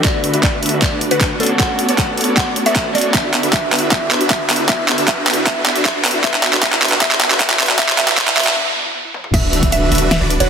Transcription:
Already playing: riser
0.02 D3 A3 B3 D4 E4 B4 D5 E5, kick, clap, closed hi-hat
0.06 F#4
0.24 closed hi-hat
0.34 D3 D4 F#4 B4 E5, closed hi-hat
0.43 D5, kick, clap, closed hi-hat
0.63 D3 D4 F#4 B4 E5, closed hi-hat
0.66 closed hi-hat
0.69 closed hi-hat
0.82 D5, kick, clap, closed hi-hat
0.92 D3 D4 F#4 B4 D5
1.01 closed hi-hat
1.11 D3 D4 F#4 B4 F#5, closed hi-hat
1.21 kick, clap, closed hi-hat
1.31 D3 D4 F#4 B4 F#5
1.39 A3 B3 C#4 D4 F#4 A4 C#5 D5, closed hi-hat
1.43 closed hi-hat
1.46 closed hi-hat
1.57 A3 B3 C#4 D4 F#4 A4 C#5 D5 F#5, kick, clap, closed hi-hat
1.79 closed hi-hat
1.89 B3 F#4 A4 C#5 D5, closed hi-hat
1.98 F#5, kick, clap, closed hi-hat
2.17 B3 F#4 A4 C#5 D5, closed hi-hat
2.21 closed hi-hat
2.24 closed hi-hat
2.37 F#5, kick, clap, closed hi-hat
2.46 B3 F#4 A4 C#5 D5
2.56 closed hi-hat
2.66 B3 F#4 A4 C#5 D5 E5, closed hi-hat
2.76 kick, clap, closed hi-hat
2.85 B3 F#4 A4 C#5 D5
2.94 A3 B3 C#4 D4 F#4 A4 C#5 D5, closed hi-hat
2.98 closed hi-hat
3.01 closed hi-hat
3.14 D3 B3 D4 E5, kick, clap, closed hi-hat
3.24 E4
3.34 B3, clap, closed hi-hat
3.43 D3 D4 F#4 B4 E5, closed hi-hat
3.53 D4 E5, kick, clap, closed hi-hat
3.63 F#4
3.72 D3 B3 D4 F#4 B4 E5, clap, closed hi-hat
3.75 closed hi-hat
3.79 E4, closed hi-hat
3.91 D3 B3 D4 F#4 E5, kick, clap, closed hi-hat
4.01 E4
4.11 B3, clap, closed hi-hat
4.21 D3 D4 F#4 B4 E5, closed hi-hat
4.30 D4 E5, kick, clap, closed hi-hat
4.40 F#4
4.50 D3 B3 D4 F#4 B4 E5, clap, closed hi-hat, open hi-hat
4.56 E4, closed hi-hat
4.69 D3 D4 F#4 B4 E5, kick, clap, closed hi-hat
4.79 E4
4.88 B3, clap, closed hi-hat
4.98 D3 D4 F#4 B4 E5, closed hi-hat
5.08 E5, kick, clap, closed hi-hat
5.18 F#4
5.27 D3 B3 D4 F#4 B4 E5, clap, closed hi-hat
5.30 closed hi-hat
5.33 E4, closed hi-hat
5.46 B3 E5, kick, clap, closed hi-hat
5.56 E4
5.66 B3, clap, closed hi-hat
5.76 D3 D4 F#4 B4 E5, closed hi-hat
5.85 D4 E5, kick, clap, closed hi-hat
5.95 F#4
6.04 D3 B3 D4 F#4 B4 E5, clap, closed hi-hat, open hi-hat
6.11 E4, closed hi-hat
6.24 B3 E5, kick, clap, closed hi-hat
6.34 E4, clap
6.43 B3, clap, closed hi-hat
6.53 D3 D4 F#4 B4 E5, clap, closed hi-hat
6.63 B3 E5, kick, clap, closed hi-hat
6.72 E4, clap
6.82 B3, clap, closed hi-hat
6.85 closed hi-hat
6.88 D3 D4 F#4 B4 E5, clap, closed hi-hat
7.01 D3 B3 D4 F#4 B4 E5, kick, clap, closed hi-hat
7.11 E4, clap
7.21 B3, clap, closed hi-hat
7.30 D3 D4 F#4 B4 E5, clap, closed hi-hat
7.40 D3 B3 D4 F#4 B4 E5, kick, clap, closed hi-hat
7.50 E4, clap
7.59 B3, clap, closed hi-hat, open hi-hat
7.66 D3 D4 F#4 B4 E5, clap, closed hi-hat
7.79 E5, kick, clap, closed hi-hat
7.89 E4, clap
7.98 D3 B3 D4 F#4 B4 E5, clap, closed hi-hat
8.08 E4, clap, closed hi-hat
8.17 B3 E5, kick, clap, closed hi-hat
8.27 E4, clap
8.37 D3 B3 D4 F#4 B4 E5, clap, closed hi-hat
8.40 closed hi-hat
8.43 E4, clap, closed hi-hat
8.56 B3
8.66 E4
8.75 B3
8.85 E4
8.95 B3
9.05 E4
9.14 B3, high tom
9.24 E4, mid tom
9.34 D1 D3 D4 F#4 B4 E5, kick, closed hi-hat, crash, impact
9.53 closed hi-hat
9.63 D1 D3 D4 F#4 B4 E5, kick, closed hi-hat
9.72 E5, closed hi-hat
9.92 D1 D3 D4 F#4 B4 E5, closed hi-hat
9.95 closed hi-hat
9.98 closed hi-hat
10.11 E5, snare, closed hi-hat
10.21 D1 D3 D4 F#4 B4 D5
10.30 closed hi-hat
10.40 D1 D3 D4 F#4 B4 C#5 F#5, closed hi-hat

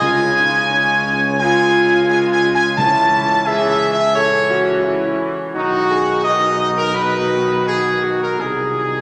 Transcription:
0.00 C#2 C#3 G#3 F4 G#5
0.37 D#4
0.71 C#4
1.39 C#3 G#3 F4 G#5
2.08 C#3 G#3 G#5
2.32 G#5
2.44 C#3
2.54 G#5
2.76 C#3 E3 C#4 E4 A5
3.46 E3 C#4 G#4 E5
3.69 E5
3.93 E5
4.15 E3 C#4 A4 C#5
4.50 F#4
4.84 E4
5.54 B1 D#3 D#4 F#4
5.89 G#4
6.24 D#3 D#4 F#4 D#5
6.59 D#5
6.78 A#4
6.94 D#3 D#4 B4
7.67 G#4
8.03 F#4
8.22 A#4
8.38 C2 D#3 D#4 G#4

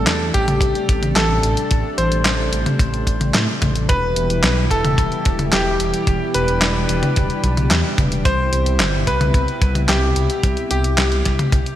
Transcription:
Already playing: C3 G3 A3 D4 A4
0.07 E2, snare, clap, closed hi-hat
0.34 A1 G4, kick, closed hi-hat
0.48 closed hi-hat, mid tom
0.61 A1, kick, closed hi-hat
0.75 closed hi-hat
0.89 A1, kick, closed hi-hat
1.03 closed hi-hat, mid tom
1.16 A1 A4, snare, clap, closed hi-hat
1.43 A1, closed hi-hat
1.57 closed hi-hat
1.71 A1, kick, closed hi-hat
1.98 A1 C5, closed hi-hat
2.12 A1, closed hi-hat
2.25 A1, snare, clap, closed hi-hat
2.53 A1, closed hi-hat
2.66 closed hi-hat, mid tom
2.79 A1, kick, closed hi-hat
2.94 closed hi-hat
3.07 A1, kick, closed hi-hat
3.21 closed hi-hat, mid tom
3.34 A2, snare, clap, closed hi-hat
3.62 A1, kick, closed hi-hat, mid tom
3.75 closed hi-hat
3.89 E1 B2 E3 G3 E4 G4 B4, kick, closed hi-hat
4.16 E1, closed hi-hat
4.30 E1, closed hi-hat
4.44 B1, snare, clap, closed hi-hat
4.71 E1 A4, kick, closed hi-hat
4.85 closed hi-hat, mid tom
4.98 E1, kick, closed hi-hat
5.12 closed hi-hat
5.25 E1, kick, closed hi-hat
5.39 closed hi-hat, mid tom
5.53 E1 G4, snare, clap, closed hi-hat
5.80 E1, closed hi-hat
5.94 closed hi-hat
6.07 E1 D4, kick, closed hi-hat
6.34 E1 B4, closed hi-hat
6.48 E1, closed hi-hat
6.62 E1, snare, clap, closed hi-hat
6.89 E1, closed hi-hat
7.03 closed hi-hat, mid tom
7.16 E1, kick, closed hi-hat
7.30 closed hi-hat
7.44 B1, kick, closed hi-hat
7.57 closed hi-hat, mid tom
7.71 E2, snare, clap, closed hi-hat
7.98 E1, kick, closed hi-hat, mid tom
8.12 closed hi-hat
8.25 C2 B2 C3 E4 C5, kick, closed hi-hat
8.52 C2, closed hi-hat
8.66 C2, closed hi-hat
8.79 G1, snare, clap, closed hi-hat
9.07 C2 B4, kick, closed hi-hat
9.21 closed hi-hat, mid tom
9.34 C2, kick, closed hi-hat
9.48 closed hi-hat
9.61 C2, kick, closed hi-hat
9.75 closed hi-hat, mid tom
9.89 C2 G4, snare, clap, closed hi-hat
10.16 C2, closed hi-hat
10.30 closed hi-hat
10.43 C2, kick, closed hi-hat
10.57 closed hi-hat
10.71 C2 G4, closed hi-hat
10.84 C2, closed hi-hat
10.98 C2, snare, clap, closed hi-hat
11.12 closed hi-hat
11.25 C2, kick, snare, closed hi-hat
11.39 closed hi-hat, mid tom
11.52 C2, kick, closed hi-hat
11.66 closed hi-hat

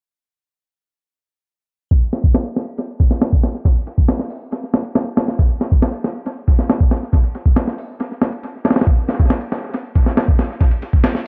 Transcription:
1.91 kick, ride
2.13 snare, ride
2.24 kick
2.34 snare, ride
2.45 ride
2.56 snare, ride
2.78 ride
3.00 kick, ride
3.11 snare
3.21 snare, ride
3.33 kick
3.43 snare, ride
3.65 kick, ride
3.76 ride
3.87 ride
3.98 kick
4.08 snare, ride
4.19 snare
4.30 open hi-hat
4.52 ride
4.74 snare, ride
4.85 ride
4.95 snare, ride
5.17 snare, ride
5.28 snare
5.39 kick, ride
5.61 snare, ride
5.72 kick
5.82 snare, ride
5.94 ride
6.04 snare, ride
6.26 ride
6.48 kick, ride
6.59 snare
6.70 snare, ride
6.80 kick
6.91 snare, ride
7.13 kick, ride
7.24 ride
7.35 ride
7.46 kick
7.56 snare, ride
7.68 snare
7.78 open hi-hat
8.00 ride
8.22 snare, ride
8.32 ride
8.43 ride
8.65 snare, ride
8.70 snare, ride
8.76 snare, ride
8.81 snare, ride
8.87 kick, ride
9.09 snare, ride
9.19 kick
9.30 snare, ride
9.41 ride
9.52 snare, ride
9.74 ride
9.95 kick, ride
10.06 snare
10.17 snare, ride
10.28 kick
10.39 snare, ride
10.61 kick, ride
10.71 ride
10.82 ride
10.93 kick
11.04 snare, ride
11.15 snare

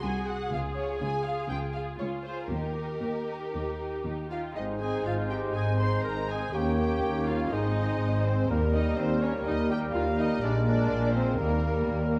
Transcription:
0.03 C2 F#4 G#4 G#5
0.27 F#4 G#4 F#5
0.51 C#2 F4 G#4 F5
0.76 F4 G#4 C#5
1.00 C#2 F4 G#4 G#5
1.24 F4 G#4 F5
1.49 C#2 F4 G#4 G5
1.74 F4 G#4 F5
1.99 C#2 F4 G#4 C#5
2.25 F4 G#4 C5
2.49 D#2 D#4 G4 A#4
2.76 D#4 G4
3.00 D#2 D#4 G4
3.27 D#4 G4
3.53 D#2 D#4 G4
3.79 D#4 G4
4.05 D#2 D#4 G4
4.31 D#4 F4 G4 F5
4.55 G#1 G#2 G#3 C4 D#4 G#4 C5 D#5
4.80 C4 D#4 G#4 G#5
5.05 G#1 G#2 F4 F5
5.30 C4 D#4 G4 G5
5.55 G#1 G#2 G#4 G#5
5.80 C4 D#4 C5 C6
6.04 G#1 G#2 A#4 A#5
6.29 C4 D#4 G#4 G#5
6.53 D#2 A#3 C#4 G4 A#4 C#5 G5
6.78 A#3 C#4 G4 G5
7.04 D#2
7.27 A#3 C#4 F4 F5
7.51 G#1 G#2 G#3 C4 D#4 G#4 C5 D#5
7.77 G#3 C4
8.01 G#1 G#2
8.25 G#3 C4 C5
8.49 D#2 G3 A#3 G4 A#4
8.73 G3 A#3 D#4 D#5
8.97 D#2 C4 C5
9.22 G3 A#3 C#4 C#5
9.46 D#2 D#4 D#5
9.71 G3 A#3 G4 G5
9.94 D#2 F4 F5
10.19 G3 A#3 D#4 D#5
10.43 A#1 A#2 G#3 D4 G#4 D5
10.66 G#3 A#3 D4 D5
10.91 A#1 A#2
11.14 G#3 A#3 C4 C5
11.38 D#2 G3 A#3 G4 A#4
11.63 G3 A#3
11.87 D#2
12.12 G3 A#3

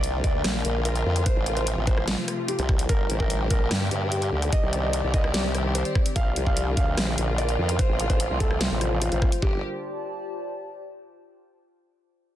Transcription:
Already playing: C2 D3 F3 A#3 C4 F4 G4 A#4 D5
0.04 closed hi-hat
0.08 F5
0.24 D2 D5, kick, closed hi-hat
0.36 C6
0.44 A#1, cross-stick, snare, closed hi-hat
0.65 A#1, closed hi-hat
0.85 A#4, closed hi-hat
0.95 closed hi-hat
1.06 F2
1.16 closed hi-hat
1.26 C3 F3 A3 F4 C5, kick, closed hi-hat
1.36 A1
1.46 closed hi-hat
1.57 C5, closed hi-hat
1.67 closed hi-hat
1.77 A1
1.83 C5, kick, closed hi-hat
1.97 G5, cross-stick
2.08 snare, closed hi-hat
2.28 cross-stick, closed hi-hat
2.48 G4, closed hi-hat
2.59 C2, closed hi-hat
2.69 kick, cross-stick
2.79 closed hi-hat
2.89 G1 D3 G3 A#3 G4 A#4, kick, closed hi-hat
3.10 A1, closed hi-hat
3.20 A#4, kick
3.30 closed hi-hat
3.44 D5
3.50 A#1 A#4, kick, closed hi-hat
3.63 A5
3.71 G2, cross-stick, snare, closed hi-hat
3.91 G2, closed hi-hat
4.12 G4, closed hi-hat
4.22 closed hi-hat
4.32 D2
4.42 closed hi-hat
4.53 D#3 G3 C4 G4 D#5, kick, closed hi-hat
4.63 C2
4.73 closed hi-hat
4.83 D#5
4.93 closed hi-hat
5.04 C2
5.14 D#5, kick, closed hi-hat
5.24 cross-stick
5.34 snare, closed hi-hat
5.55 cross-stick, closed hi-hat
5.75 C5, closed hi-hat
5.85 closed hi-hat
5.95 kick, cross-stick
6.06 closed hi-hat
6.16 A#1 D3 F3 A#3 F4 A#4 F5, kick, closed hi-hat
6.36 C2, closed hi-hat
6.46 F5, kick
6.57 closed hi-hat
6.71 C6
6.76 D2 F5, kick, closed hi-hat
6.97 A#1, cross-stick, snare, closed hi-hat
7.18 A#1, closed hi-hat
7.38 D5, closed hi-hat
7.49 closed hi-hat
7.59 F2
7.69 closed hi-hat
7.79 C3 F3 A3 F4 C5, kick, closed hi-hat
7.89 A1
8.00 closed hi-hat
8.10 C5, kick, closed hi-hat
8.20 closed hi-hat
8.30 C2
8.40 A4, kick, closed hi-hat
8.51 cross-stick
8.61 snare, closed hi-hat
8.71 A1
8.81 cross-stick, closed hi-hat
9.02 F4, closed hi-hat
9.12 A1, closed hi-hat
9.22 kick, cross-stick
9.32 closed hi-hat
9.42 G1 D3 G3 A#3 G4, kick
9.49 D5
9.55 A5

